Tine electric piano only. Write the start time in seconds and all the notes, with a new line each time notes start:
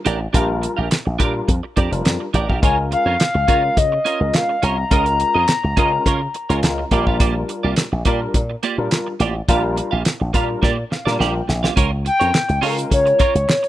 0.34 G3 D4 F4 A#4
1.19 G3 D4 F4 A#4
1.91 G3 D4 F4 A#4
2.62 G#3 C#4 F4 A#4
3.48 G#3 C#4 F4 A#4
4.20 G#3 C#4 F4 A#4
4.91 G#3 C#4 F4 A#4
5.77 G#3 C#4 F4 A#4
6.49 G#3 C#4 F4 A#4
6.91 G3 D4 F4 A#4
8.06 G3 D4 F4 A#4
8.78 G3 D4 F4 A#4
9.49 G3 D4 F4 A#4
10.34 G3 D4 F4 A#4
10.92 F5
11.06 G3 D4 F4 A#4
11.20 G5
12.62 G#3 C#4 F4 A4
12.69 A#4